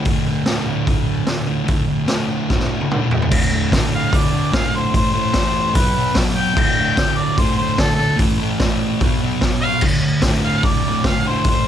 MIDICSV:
0, 0, Header, 1, 4, 480
1, 0, Start_track
1, 0, Tempo, 406780
1, 68, Time_signature, 4, 2, 24, 8
1, 13780, End_track
2, 0, Start_track
2, 0, Title_t, "Harmonica"
2, 0, Program_c, 0, 22
2, 4664, Note_on_c, 0, 77, 84
2, 4911, Note_on_c, 0, 74, 85
2, 4929, Note_off_c, 0, 77, 0
2, 5348, Note_off_c, 0, 74, 0
2, 5355, Note_on_c, 0, 77, 100
2, 5584, Note_off_c, 0, 77, 0
2, 5613, Note_on_c, 0, 72, 85
2, 5834, Note_off_c, 0, 72, 0
2, 5851, Note_on_c, 0, 72, 112
2, 6044, Note_off_c, 0, 72, 0
2, 6051, Note_on_c, 0, 72, 104
2, 6788, Note_on_c, 0, 71, 114
2, 6805, Note_off_c, 0, 72, 0
2, 7251, Note_off_c, 0, 71, 0
2, 7500, Note_on_c, 0, 79, 114
2, 8460, Note_on_c, 0, 74, 98
2, 8477, Note_off_c, 0, 79, 0
2, 8719, Note_on_c, 0, 72, 82
2, 8737, Note_off_c, 0, 74, 0
2, 8923, Note_off_c, 0, 72, 0
2, 8930, Note_on_c, 0, 72, 99
2, 9169, Note_off_c, 0, 72, 0
2, 9197, Note_on_c, 0, 69, 101
2, 9377, Note_off_c, 0, 69, 0
2, 9384, Note_on_c, 0, 69, 102
2, 9636, Note_off_c, 0, 69, 0
2, 11349, Note_on_c, 0, 77, 121
2, 11581, Note_off_c, 0, 77, 0
2, 12319, Note_on_c, 0, 77, 95
2, 12571, Note_on_c, 0, 74, 88
2, 12588, Note_off_c, 0, 77, 0
2, 13027, Note_off_c, 0, 74, 0
2, 13059, Note_on_c, 0, 77, 93
2, 13279, Note_off_c, 0, 77, 0
2, 13304, Note_on_c, 0, 72, 86
2, 13522, Note_off_c, 0, 72, 0
2, 13553, Note_on_c, 0, 72, 101
2, 13766, Note_off_c, 0, 72, 0
2, 13780, End_track
3, 0, Start_track
3, 0, Title_t, "Distorted electric guitar"
3, 0, Program_c, 1, 30
3, 71, Note_on_c, 1, 38, 101
3, 90, Note_on_c, 1, 45, 106
3, 113, Note_on_c, 1, 50, 109
3, 299, Note_off_c, 1, 50, 0
3, 304, Note_on_c, 1, 50, 82
3, 329, Note_off_c, 1, 45, 0
3, 343, Note_on_c, 1, 45, 66
3, 534, Note_off_c, 1, 38, 0
3, 539, Note_on_c, 1, 38, 94
3, 542, Note_off_c, 1, 45, 0
3, 556, Note_on_c, 1, 45, 97
3, 579, Note_off_c, 1, 50, 0
3, 583, Note_on_c, 1, 50, 96
3, 779, Note_off_c, 1, 50, 0
3, 784, Note_on_c, 1, 50, 72
3, 813, Note_off_c, 1, 45, 0
3, 827, Note_on_c, 1, 45, 57
3, 1481, Note_off_c, 1, 38, 0
3, 1486, Note_on_c, 1, 38, 77
3, 1501, Note_off_c, 1, 45, 0
3, 1515, Note_on_c, 1, 45, 72
3, 1521, Note_off_c, 1, 50, 0
3, 1526, Note_on_c, 1, 50, 76
3, 1717, Note_off_c, 1, 50, 0
3, 1722, Note_on_c, 1, 50, 73
3, 1744, Note_off_c, 1, 45, 0
3, 1759, Note_on_c, 1, 45, 59
3, 1939, Note_off_c, 1, 38, 0
3, 1943, Note_on_c, 1, 38, 100
3, 1958, Note_off_c, 1, 45, 0
3, 1961, Note_off_c, 1, 50, 0
3, 1972, Note_on_c, 1, 45, 94
3, 1975, Note_on_c, 1, 50, 101
3, 2188, Note_off_c, 1, 50, 0
3, 2202, Note_on_c, 1, 50, 81
3, 2238, Note_off_c, 1, 45, 0
3, 2253, Note_on_c, 1, 45, 62
3, 2411, Note_off_c, 1, 38, 0
3, 2425, Note_on_c, 1, 38, 83
3, 2433, Note_off_c, 1, 45, 0
3, 2447, Note_on_c, 1, 45, 87
3, 2448, Note_off_c, 1, 50, 0
3, 2463, Note_on_c, 1, 50, 98
3, 2683, Note_off_c, 1, 50, 0
3, 2697, Note_on_c, 1, 50, 73
3, 2717, Note_off_c, 1, 45, 0
3, 2732, Note_on_c, 1, 45, 65
3, 2929, Note_off_c, 1, 38, 0
3, 3421, Note_on_c, 1, 38, 66
3, 3430, Note_off_c, 1, 45, 0
3, 3442, Note_off_c, 1, 50, 0
3, 3444, Note_on_c, 1, 45, 69
3, 3456, Note_on_c, 1, 50, 82
3, 3633, Note_off_c, 1, 50, 0
3, 3647, Note_on_c, 1, 50, 63
3, 3681, Note_off_c, 1, 45, 0
3, 3695, Note_on_c, 1, 45, 59
3, 3875, Note_off_c, 1, 38, 0
3, 3885, Note_off_c, 1, 50, 0
3, 3889, Note_on_c, 1, 38, 102
3, 3896, Note_off_c, 1, 45, 0
3, 3910, Note_on_c, 1, 45, 103
3, 3928, Note_on_c, 1, 50, 116
3, 4136, Note_off_c, 1, 50, 0
3, 4150, Note_on_c, 1, 50, 69
3, 4166, Note_off_c, 1, 45, 0
3, 4181, Note_on_c, 1, 45, 61
3, 4360, Note_off_c, 1, 38, 0
3, 4374, Note_on_c, 1, 38, 77
3, 4380, Note_off_c, 1, 45, 0
3, 4394, Note_on_c, 1, 45, 85
3, 4404, Note_off_c, 1, 50, 0
3, 4419, Note_on_c, 1, 50, 82
3, 4844, Note_off_c, 1, 38, 0
3, 4858, Note_on_c, 1, 38, 98
3, 4874, Note_off_c, 1, 45, 0
3, 4889, Note_on_c, 1, 45, 97
3, 4894, Note_off_c, 1, 50, 0
3, 4908, Note_on_c, 1, 50, 124
3, 5084, Note_off_c, 1, 50, 0
3, 5099, Note_on_c, 1, 50, 75
3, 5129, Note_off_c, 1, 45, 0
3, 5143, Note_on_c, 1, 45, 58
3, 5329, Note_off_c, 1, 38, 0
3, 5344, Note_on_c, 1, 38, 79
3, 5361, Note_off_c, 1, 45, 0
3, 5367, Note_off_c, 1, 50, 0
3, 5375, Note_on_c, 1, 45, 84
3, 5381, Note_on_c, 1, 50, 80
3, 5575, Note_off_c, 1, 50, 0
3, 5590, Note_on_c, 1, 50, 76
3, 5618, Note_off_c, 1, 45, 0
3, 5632, Note_on_c, 1, 45, 60
3, 5805, Note_off_c, 1, 45, 0
3, 5811, Note_off_c, 1, 38, 0
3, 5814, Note_off_c, 1, 50, 0
3, 5819, Note_on_c, 1, 45, 101
3, 5838, Note_on_c, 1, 52, 102
3, 5860, Note_on_c, 1, 57, 110
3, 6048, Note_off_c, 1, 57, 0
3, 6062, Note_on_c, 1, 57, 84
3, 6092, Note_off_c, 1, 52, 0
3, 6107, Note_on_c, 1, 52, 72
3, 6273, Note_off_c, 1, 45, 0
3, 6288, Note_on_c, 1, 45, 72
3, 6293, Note_off_c, 1, 52, 0
3, 6307, Note_on_c, 1, 52, 83
3, 6314, Note_off_c, 1, 57, 0
3, 6328, Note_on_c, 1, 57, 78
3, 6762, Note_off_c, 1, 45, 0
3, 6770, Note_on_c, 1, 47, 105
3, 6771, Note_off_c, 1, 52, 0
3, 6782, Note_off_c, 1, 57, 0
3, 6793, Note_on_c, 1, 54, 104
3, 6805, Note_on_c, 1, 59, 99
3, 6997, Note_off_c, 1, 59, 0
3, 7011, Note_on_c, 1, 59, 80
3, 7042, Note_off_c, 1, 54, 0
3, 7056, Note_on_c, 1, 54, 58
3, 7221, Note_off_c, 1, 47, 0
3, 7235, Note_on_c, 1, 47, 76
3, 7242, Note_off_c, 1, 54, 0
3, 7256, Note_on_c, 1, 54, 82
3, 7262, Note_off_c, 1, 59, 0
3, 7276, Note_on_c, 1, 59, 82
3, 7486, Note_off_c, 1, 59, 0
3, 7500, Note_on_c, 1, 59, 81
3, 7536, Note_off_c, 1, 54, 0
3, 7550, Note_on_c, 1, 54, 64
3, 7714, Note_off_c, 1, 47, 0
3, 7722, Note_on_c, 1, 38, 108
3, 7727, Note_off_c, 1, 59, 0
3, 7735, Note_off_c, 1, 54, 0
3, 7740, Note_on_c, 1, 45, 100
3, 7760, Note_on_c, 1, 50, 103
3, 7975, Note_off_c, 1, 50, 0
3, 7990, Note_on_c, 1, 50, 73
3, 8003, Note_off_c, 1, 45, 0
3, 8017, Note_on_c, 1, 45, 67
3, 8212, Note_off_c, 1, 38, 0
3, 8233, Note_on_c, 1, 38, 69
3, 8244, Note_off_c, 1, 45, 0
3, 8253, Note_off_c, 1, 50, 0
3, 8258, Note_on_c, 1, 45, 82
3, 8267, Note_on_c, 1, 50, 83
3, 8688, Note_off_c, 1, 38, 0
3, 8702, Note_on_c, 1, 38, 92
3, 8713, Note_off_c, 1, 45, 0
3, 8724, Note_off_c, 1, 50, 0
3, 8727, Note_on_c, 1, 45, 92
3, 8738, Note_on_c, 1, 50, 111
3, 8923, Note_off_c, 1, 50, 0
3, 8937, Note_on_c, 1, 50, 76
3, 8969, Note_off_c, 1, 45, 0
3, 8983, Note_on_c, 1, 45, 71
3, 9155, Note_off_c, 1, 38, 0
3, 9169, Note_on_c, 1, 38, 78
3, 9170, Note_off_c, 1, 45, 0
3, 9184, Note_on_c, 1, 45, 77
3, 9187, Note_off_c, 1, 50, 0
3, 9202, Note_on_c, 1, 50, 93
3, 9382, Note_off_c, 1, 50, 0
3, 9396, Note_on_c, 1, 50, 70
3, 9426, Note_off_c, 1, 45, 0
3, 9440, Note_on_c, 1, 45, 60
3, 9624, Note_off_c, 1, 45, 0
3, 9634, Note_off_c, 1, 38, 0
3, 9635, Note_off_c, 1, 50, 0
3, 9638, Note_on_c, 1, 45, 104
3, 9668, Note_on_c, 1, 52, 109
3, 9679, Note_on_c, 1, 57, 117
3, 9891, Note_off_c, 1, 57, 0
3, 9905, Note_on_c, 1, 57, 80
3, 9928, Note_off_c, 1, 52, 0
3, 9942, Note_on_c, 1, 52, 68
3, 10131, Note_off_c, 1, 45, 0
3, 10149, Note_off_c, 1, 52, 0
3, 10150, Note_on_c, 1, 45, 81
3, 10162, Note_off_c, 1, 57, 0
3, 10163, Note_on_c, 1, 52, 72
3, 10176, Note_on_c, 1, 57, 89
3, 10613, Note_off_c, 1, 45, 0
3, 10620, Note_off_c, 1, 52, 0
3, 10626, Note_off_c, 1, 57, 0
3, 10633, Note_on_c, 1, 47, 96
3, 10661, Note_on_c, 1, 54, 109
3, 10671, Note_on_c, 1, 59, 95
3, 10865, Note_off_c, 1, 59, 0
3, 10879, Note_on_c, 1, 59, 75
3, 10895, Note_off_c, 1, 54, 0
3, 10909, Note_on_c, 1, 54, 59
3, 11110, Note_off_c, 1, 47, 0
3, 11132, Note_on_c, 1, 47, 77
3, 11134, Note_off_c, 1, 54, 0
3, 11148, Note_on_c, 1, 54, 74
3, 11155, Note_off_c, 1, 59, 0
3, 11169, Note_on_c, 1, 59, 74
3, 11351, Note_off_c, 1, 59, 0
3, 11365, Note_on_c, 1, 59, 68
3, 11387, Note_off_c, 1, 54, 0
3, 11401, Note_on_c, 1, 54, 67
3, 11582, Note_off_c, 1, 59, 0
3, 11585, Note_off_c, 1, 47, 0
3, 11600, Note_off_c, 1, 54, 0
3, 11603, Note_on_c, 1, 38, 105
3, 11638, Note_on_c, 1, 45, 111
3, 11652, Note_on_c, 1, 50, 112
3, 11824, Note_off_c, 1, 50, 0
3, 11838, Note_on_c, 1, 50, 75
3, 11850, Note_off_c, 1, 45, 0
3, 11864, Note_on_c, 1, 45, 56
3, 12060, Note_off_c, 1, 38, 0
3, 12074, Note_on_c, 1, 38, 80
3, 12075, Note_off_c, 1, 45, 0
3, 12089, Note_on_c, 1, 45, 71
3, 12101, Note_off_c, 1, 50, 0
3, 12115, Note_on_c, 1, 50, 96
3, 12539, Note_off_c, 1, 38, 0
3, 12553, Note_on_c, 1, 38, 93
3, 12557, Note_off_c, 1, 45, 0
3, 12572, Note_on_c, 1, 45, 102
3, 12580, Note_off_c, 1, 50, 0
3, 12594, Note_on_c, 1, 50, 108
3, 12797, Note_off_c, 1, 50, 0
3, 12811, Note_on_c, 1, 50, 84
3, 12830, Note_off_c, 1, 45, 0
3, 12844, Note_on_c, 1, 45, 68
3, 13030, Note_off_c, 1, 38, 0
3, 13044, Note_on_c, 1, 38, 66
3, 13062, Note_off_c, 1, 45, 0
3, 13076, Note_on_c, 1, 45, 83
3, 13080, Note_off_c, 1, 50, 0
3, 13094, Note_on_c, 1, 50, 76
3, 13269, Note_off_c, 1, 50, 0
3, 13283, Note_on_c, 1, 50, 81
3, 13317, Note_off_c, 1, 45, 0
3, 13331, Note_on_c, 1, 45, 65
3, 13503, Note_off_c, 1, 50, 0
3, 13504, Note_off_c, 1, 38, 0
3, 13509, Note_off_c, 1, 45, 0
3, 13523, Note_on_c, 1, 45, 112
3, 13545, Note_on_c, 1, 52, 109
3, 13570, Note_on_c, 1, 57, 118
3, 13738, Note_off_c, 1, 57, 0
3, 13779, Note_off_c, 1, 52, 0
3, 13780, Note_off_c, 1, 45, 0
3, 13780, End_track
4, 0, Start_track
4, 0, Title_t, "Drums"
4, 60, Note_on_c, 9, 46, 57
4, 69, Note_on_c, 9, 36, 111
4, 178, Note_off_c, 9, 46, 0
4, 187, Note_off_c, 9, 36, 0
4, 541, Note_on_c, 9, 38, 110
4, 541, Note_on_c, 9, 46, 56
4, 659, Note_off_c, 9, 38, 0
4, 659, Note_off_c, 9, 46, 0
4, 1029, Note_on_c, 9, 36, 111
4, 1031, Note_on_c, 9, 46, 57
4, 1147, Note_off_c, 9, 36, 0
4, 1149, Note_off_c, 9, 46, 0
4, 1496, Note_on_c, 9, 38, 110
4, 1496, Note_on_c, 9, 46, 49
4, 1614, Note_off_c, 9, 38, 0
4, 1614, Note_off_c, 9, 46, 0
4, 1981, Note_on_c, 9, 46, 57
4, 1990, Note_on_c, 9, 36, 126
4, 2099, Note_off_c, 9, 46, 0
4, 2108, Note_off_c, 9, 36, 0
4, 2453, Note_on_c, 9, 38, 106
4, 2453, Note_on_c, 9, 46, 50
4, 2571, Note_off_c, 9, 38, 0
4, 2571, Note_off_c, 9, 46, 0
4, 2945, Note_on_c, 9, 38, 62
4, 2952, Note_on_c, 9, 36, 112
4, 3063, Note_off_c, 9, 38, 0
4, 3063, Note_on_c, 9, 38, 53
4, 3070, Note_off_c, 9, 36, 0
4, 3181, Note_off_c, 9, 38, 0
4, 3314, Note_on_c, 9, 48, 58
4, 3432, Note_off_c, 9, 48, 0
4, 3438, Note_on_c, 9, 47, 80
4, 3556, Note_off_c, 9, 47, 0
4, 3671, Note_on_c, 9, 43, 89
4, 3789, Note_off_c, 9, 43, 0
4, 3800, Note_on_c, 9, 43, 82
4, 3911, Note_on_c, 9, 49, 127
4, 3915, Note_on_c, 9, 36, 127
4, 3918, Note_off_c, 9, 43, 0
4, 4029, Note_off_c, 9, 49, 0
4, 4033, Note_off_c, 9, 36, 0
4, 4393, Note_on_c, 9, 36, 102
4, 4399, Note_on_c, 9, 38, 112
4, 4399, Note_on_c, 9, 46, 62
4, 4511, Note_off_c, 9, 36, 0
4, 4517, Note_off_c, 9, 38, 0
4, 4517, Note_off_c, 9, 46, 0
4, 4871, Note_on_c, 9, 36, 121
4, 4880, Note_on_c, 9, 46, 59
4, 4989, Note_off_c, 9, 36, 0
4, 4998, Note_off_c, 9, 46, 0
4, 5352, Note_on_c, 9, 36, 116
4, 5355, Note_on_c, 9, 38, 114
4, 5355, Note_on_c, 9, 46, 60
4, 5470, Note_off_c, 9, 36, 0
4, 5473, Note_off_c, 9, 38, 0
4, 5473, Note_off_c, 9, 46, 0
4, 5832, Note_on_c, 9, 36, 117
4, 5832, Note_on_c, 9, 46, 61
4, 5950, Note_off_c, 9, 36, 0
4, 5950, Note_off_c, 9, 46, 0
4, 6297, Note_on_c, 9, 38, 107
4, 6297, Note_on_c, 9, 46, 70
4, 6309, Note_on_c, 9, 36, 118
4, 6415, Note_off_c, 9, 38, 0
4, 6415, Note_off_c, 9, 46, 0
4, 6427, Note_off_c, 9, 36, 0
4, 6784, Note_on_c, 9, 46, 67
4, 6790, Note_on_c, 9, 36, 125
4, 6902, Note_off_c, 9, 46, 0
4, 6908, Note_off_c, 9, 36, 0
4, 7256, Note_on_c, 9, 38, 112
4, 7256, Note_on_c, 9, 46, 76
4, 7269, Note_on_c, 9, 36, 114
4, 7374, Note_off_c, 9, 38, 0
4, 7374, Note_off_c, 9, 46, 0
4, 7387, Note_off_c, 9, 36, 0
4, 7750, Note_on_c, 9, 36, 127
4, 7758, Note_on_c, 9, 49, 105
4, 7868, Note_off_c, 9, 36, 0
4, 7876, Note_off_c, 9, 49, 0
4, 8226, Note_on_c, 9, 38, 113
4, 8226, Note_on_c, 9, 46, 65
4, 8227, Note_on_c, 9, 36, 118
4, 8344, Note_off_c, 9, 38, 0
4, 8344, Note_off_c, 9, 46, 0
4, 8345, Note_off_c, 9, 36, 0
4, 8704, Note_on_c, 9, 46, 60
4, 8706, Note_on_c, 9, 36, 113
4, 8822, Note_off_c, 9, 46, 0
4, 8824, Note_off_c, 9, 36, 0
4, 9184, Note_on_c, 9, 38, 119
4, 9184, Note_on_c, 9, 46, 64
4, 9187, Note_on_c, 9, 36, 116
4, 9302, Note_off_c, 9, 38, 0
4, 9302, Note_off_c, 9, 46, 0
4, 9305, Note_off_c, 9, 36, 0
4, 9662, Note_on_c, 9, 46, 68
4, 9668, Note_on_c, 9, 36, 115
4, 9780, Note_off_c, 9, 46, 0
4, 9786, Note_off_c, 9, 36, 0
4, 10145, Note_on_c, 9, 38, 114
4, 10145, Note_on_c, 9, 46, 55
4, 10149, Note_on_c, 9, 36, 116
4, 10263, Note_off_c, 9, 38, 0
4, 10263, Note_off_c, 9, 46, 0
4, 10267, Note_off_c, 9, 36, 0
4, 10627, Note_on_c, 9, 46, 63
4, 10633, Note_on_c, 9, 36, 117
4, 10745, Note_off_c, 9, 46, 0
4, 10751, Note_off_c, 9, 36, 0
4, 11108, Note_on_c, 9, 38, 105
4, 11108, Note_on_c, 9, 46, 72
4, 11114, Note_on_c, 9, 36, 111
4, 11226, Note_off_c, 9, 38, 0
4, 11226, Note_off_c, 9, 46, 0
4, 11232, Note_off_c, 9, 36, 0
4, 11577, Note_on_c, 9, 57, 105
4, 11590, Note_on_c, 9, 36, 123
4, 11695, Note_off_c, 9, 57, 0
4, 11708, Note_off_c, 9, 36, 0
4, 12056, Note_on_c, 9, 38, 103
4, 12056, Note_on_c, 9, 46, 67
4, 12067, Note_on_c, 9, 36, 113
4, 12174, Note_off_c, 9, 38, 0
4, 12174, Note_off_c, 9, 46, 0
4, 12185, Note_off_c, 9, 36, 0
4, 12542, Note_on_c, 9, 46, 72
4, 12547, Note_on_c, 9, 36, 117
4, 12660, Note_off_c, 9, 46, 0
4, 12665, Note_off_c, 9, 36, 0
4, 13030, Note_on_c, 9, 36, 124
4, 13032, Note_on_c, 9, 38, 116
4, 13032, Note_on_c, 9, 46, 66
4, 13148, Note_off_c, 9, 36, 0
4, 13150, Note_off_c, 9, 38, 0
4, 13150, Note_off_c, 9, 46, 0
4, 13501, Note_on_c, 9, 46, 62
4, 13509, Note_on_c, 9, 36, 122
4, 13619, Note_off_c, 9, 46, 0
4, 13627, Note_off_c, 9, 36, 0
4, 13780, End_track
0, 0, End_of_file